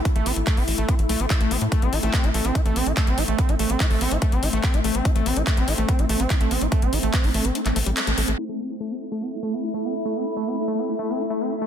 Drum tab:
HH |xxoxxooxxxoxxxox|xxoxxxoxxxoxxxox|xxoxxooxxxoxxxox|xxoxxxoxxxoxxxox|
CP |----x-------x---|----x-------x---|----x-------x---|----x-------x---|
BD |o---o---o---o---|o---o---o---o---|o---o---o---o---|o---o---o---o---|

HH |xxoxxooxxxoxxxox|----------------|----------------|
CP |----x----x--x---|----------------|----------------|
BD |o---o-----------|----------------|----------------|